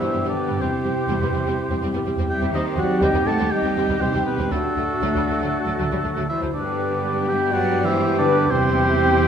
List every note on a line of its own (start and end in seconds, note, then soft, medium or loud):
0.00 0.06 G2 soft
0.00 0.29 E3 medium
0.00 0.05 A3 soft
0.00 0.57 B3 soft
0.00 0.57 D4 soft
0.00 0.27 E4 medium
0.00 2.49 G4 soft
0.00 2.50 G4 soft
0.00 0.29 C5 medium
0.00 0.28 E5 medium
0.12 0.17 G2 soft
0.12 0.18 G3 soft
0.12 0.17 B3 soft
0.24 0.30 G2 medium
0.24 0.29 G3 medium
0.24 0.29 B3 medium
0.24 0.60 D4 medium
0.29 0.61 D3 medium
0.29 0.61 B4 medium
0.29 0.62 D5 medium
0.48 0.54 G2 soft
0.48 0.53 G3 medium
0.48 0.53 B3 medium
0.59 0.66 E2 medium
0.59 2.05 C3 medium
0.59 0.66 G3 medium
0.59 2.50 C4 medium
0.59 2.03 C4 medium
0.59 0.66 C4 medium
0.59 2.53 E4 medium
0.59 2.02 G4 medium
0.59 2.05 C5 medium
0.84 0.90 E2 soft
0.84 0.90 G3 soft
0.84 0.90 C4 soft
1.08 1.13 E2 medium
1.08 1.14 G3 medium
1.08 1.14 C4 medium
1.20 1.25 E2 medium
1.20 1.27 G3 soft
1.20 1.27 B3 medium
1.33 1.38 E2 soft
1.33 1.39 G3 medium
1.33 1.39 C4 medium
1.44 1.50 E2 medium
1.44 1.51 G3 medium
1.44 1.50 C4 medium
1.69 1.74 E2 medium
1.69 1.75 G3 medium
1.69 1.75 C4 medium
1.81 1.86 E2 medium
1.81 1.88 G3 medium
1.81 1.87 C4 medium
1.93 1.98 E2 medium
1.93 2.00 G3 medium
1.93 1.98 B3 medium
2.05 2.10 E2 medium
2.05 2.11 G3 soft
2.05 2.10 C4 medium
2.16 2.22 E2 medium
2.16 2.23 G3 medium
2.16 2.22 C4 medium
2.29 2.52 G3 medium
2.29 2.51 G4 medium
2.29 2.52 E5 medium
2.29 2.40 G5 medium
2.41 2.46 E2 medium
2.41 2.47 G3 medium
2.41 2.46 C4 medium
2.52 2.58 D#2 medium
2.52 2.77 D#3 medium
2.52 2.59 G3 medium
2.52 3.47 C4 medium
2.52 2.59 C4 medium
2.52 2.76 D#4 medium
2.52 3.47 D#4 medium
2.52 3.48 G4 medium
2.52 4.48 G4 medium
2.52 2.78 C5 medium
2.52 2.65 D#5 medium
2.76 2.82 D#2 medium
2.76 3.01 F#3 medium
2.76 2.82 G3 medium
2.76 2.82 C4 medium
2.76 3.03 F#4 medium
2.76 3.02 D5 medium
2.76 3.01 F#5 medium
3.01 3.06 D#2 medium
3.01 3.26 G3 medium
3.01 3.06 G3 medium
3.01 3.07 C4 medium
3.01 3.26 G4 medium
3.01 3.26 D#5 medium
3.01 3.28 G5 medium
3.13 3.18 D#2 medium
3.13 3.19 G3 medium
3.13 3.19 B3 medium
3.25 3.30 D#2 medium
3.25 3.31 G3 medium
3.25 3.51 A3 medium
3.25 3.32 C4 medium
3.25 3.52 A4 medium
3.25 3.52 F#5 medium
3.25 3.53 A5 medium
3.38 3.44 D#2 medium
3.38 3.44 G3 medium
3.38 3.44 C4 medium
3.50 4.01 G3 medium
3.50 4.00 C4 medium
3.50 4.00 D#4 medium
3.50 4.03 G4 medium
3.50 3.99 G4 medium
3.50 4.01 D#5 medium
3.50 4.02 G5 medium
3.63 3.68 D#2 medium
3.63 3.69 G3 medium
3.63 3.69 C4 medium
3.76 3.81 D#2 medium
3.76 3.81 G3 medium
3.76 3.81 C4 medium
3.88 3.94 D#2 medium
3.88 3.94 G3 medium
3.88 3.94 B3 soft
4.00 4.05 D#2 medium
4.00 4.26 C3 medium
4.00 4.06 G3 medium
4.00 4.05 C4 soft
4.00 4.51 C4 medium
4.00 4.24 C4 medium
4.00 4.50 D#4 medium
4.00 4.50 G4 medium
4.00 4.26 G4 medium
4.00 4.25 C5 medium
4.13 4.18 D#2 medium
4.13 4.18 G3 medium
4.13 4.18 C4 medium
4.25 4.51 B2 medium
4.25 4.37 B3 medium
4.25 4.33 G4 medium
4.25 4.53 B4 medium
4.38 4.43 D#2 medium
4.38 4.43 G3 medium
4.38 4.43 C4 medium
4.50 4.56 D2 medium
4.50 6.29 A2 medium
4.50 4.55 F#3 medium
4.50 6.25 A3 medium
4.50 4.56 A3 medium
4.50 6.26 A3 medium
4.50 6.29 D4 medium
4.50 6.31 D4 medium
4.50 6.25 F#4 medium
4.50 6.26 F#4 medium
4.50 6.28 A4 medium
4.76 4.82 D2 soft
4.76 4.82 F#3 soft
4.76 4.82 A3 soft
5.01 5.07 D2 medium
5.01 5.07 F#3 medium
5.01 5.08 A3 medium
5.14 5.20 D2 soft
5.14 5.19 F#3 soft
5.14 5.21 G3 medium
5.27 5.33 D2 soft
5.27 5.32 F#3 soft
5.27 5.35 A3 soft
5.40 5.46 D2 medium
5.40 5.45 F#3 medium
5.40 5.46 A3 medium
5.66 5.71 D2 medium
5.66 5.71 F#3 medium
5.66 5.72 A3 medium
5.79 5.84 D2 medium
5.79 5.84 F#3 medium
5.79 5.84 A3 medium
5.91 5.96 D2 medium
5.91 5.97 F#3 medium
5.91 5.96 G3 soft
6.04 6.09 D2 soft
6.04 6.09 F#3 soft
6.04 6.09 A3 soft
6.16 6.22 D2 medium
6.16 6.21 F#3 medium
6.16 6.21 A3 medium
6.29 6.38 E3 medium
6.29 6.54 E4 medium
6.29 6.54 C5 medium
6.29 6.40 E5 medium
6.42 6.47 D2 medium
6.42 6.47 F#3 medium
6.42 6.47 A3 medium
6.54 8.47 G2 medium
6.54 7.27 D3 medium
6.54 9.28 G3 medium
6.54 8.47 B3 medium
6.54 7.30 D4 medium
6.54 8.47 D4 medium
6.54 8.47 G4 medium
6.54 7.28 B4 medium
6.54 7.31 D5 medium
7.28 7.36 G3 medium
7.28 7.53 G4 medium
7.28 7.53 E5 medium
7.28 7.54 G5 medium
7.51 7.85 F#3 medium
7.51 7.87 F#4 medium
7.51 7.85 D5 medium
7.51 7.87 F#5 loud
7.85 8.18 E3 medium
7.85 8.18 E4 medium
7.85 8.18 C5 medium
7.85 8.18 E5 loud
8.18 8.51 D3 medium
8.18 8.50 D4 medium
8.18 8.51 B4 loud
8.18 8.52 D5 loud
8.50 9.28 E2 medium
8.50 9.28 C3 loud
8.50 9.28 C4 loud
8.50 9.28 C4 medium
8.50 9.28 E4 medium
8.50 9.28 E4 loud
8.50 9.28 G4 loud
8.50 9.28 G4 medium
8.50 9.28 C5 loud